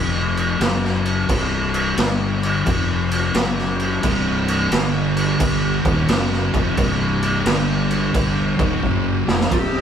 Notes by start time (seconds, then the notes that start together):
Already playing: F1 F2 C3 F3
0.37 crash
0.60 F#1 F#2 C#3 F#3, snare, crash
0.84 snare
1.05 crash
1.28 C1 C2 G2 C3, kick, crash
1.74 crash
1.97 G1 G2 D3 G3, snare, crash
2.43 crash
2.66 F1 F2 C3 F3, kick, crash
3.11 crash
3.34 F#1 F#2 C#3 F#3, snare, crash
3.58 snare
3.79 crash
4.03 C1 C2 G2 C3, kick, crash
4.48 crash
4.71 G1 G2 D3 G3, snare, crash
5.17 crash
5.40 G1 G2 D3 G3, kick, crash
5.85 D#1 D#2 A#2 D#3, kick, crash
6.08 F#1 F#2 C#3 F#3, snare, crash
6.32 snare
6.54 F1 F2 C3 F3, kick, crash
6.77 C1 C2 G2 C3, kick, crash
7.22 crash
7.45 G1 G2 D3 G3, snare, crash
7.90 crash
8.14 G1 G2 D3 G3, kick, crash
8.59 D#1 D#2 A#2 D#3, kick, crash
8.82 F#1 F#2 C#3 F#3, kick
9.27 F1 F2 C3 F3, snare
9.41 snare
9.51 C1 C2 G2 C3 G4, kick, ride